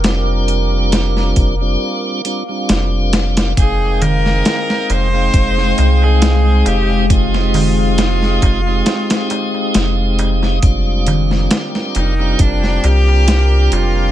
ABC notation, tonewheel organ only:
X:1
M:4/4
L:1/16
Q:"Swing 16ths" 1/4=68
K:Fdor
V:1 name="Tonewheel organ"
[G,CDF]6- [G,CDF] [G,CDF]3 [G,CDF] [G,CDF]4- [G,CDF] | [A,CEg]6- [A,CEg] [A,CEg]8- [A,CEg] | [A,CEG]6- [A,CEG] [A,CEG]8- [A,CEG] | [G,CDF]6- [G,CDF] [G,CDF]8- [G,CDF] |]